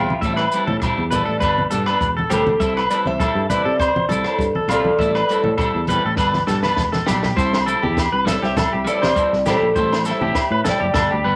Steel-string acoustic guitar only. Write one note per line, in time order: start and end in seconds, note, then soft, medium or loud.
0.00 1.09 E5 medium
0.00 1.17 G5 loud
1.12 1.99 B4 medium
1.12 1.98 D5 medium
2.30 2.88 A4 medium
2.30 2.90 C5 loud
2.90 2.95 B4 medium
2.90 2.95 D5 medium
3.07 3.48 C5 medium
3.07 3.50 E5 loud
3.50 4.23 B4 medium
3.50 4.22 D5 loud
4.29 4.69 A4 medium
4.29 4.68 C5 medium
4.72 5.27 A4 medium
4.72 5.32 D5 loud
5.30 5.86 A4 medium
5.30 5.91 C5 medium
5.91 7.05 G4 medium
5.91 7.06 B4 medium
8.29 8.34 B4 medium
8.29 8.34 D5 medium
8.44 8.84 C5 medium
8.44 8.88 E5 loud
8.88 9.43 B4 medium
8.88 9.43 D5 loud
9.49 10.03 A4 medium
9.49 10.09 C5 medium
10.11 10.64 C5 medium
10.11 10.64 E5 medium
10.69 11.36 D5 medium
10.69 11.36 G5 loud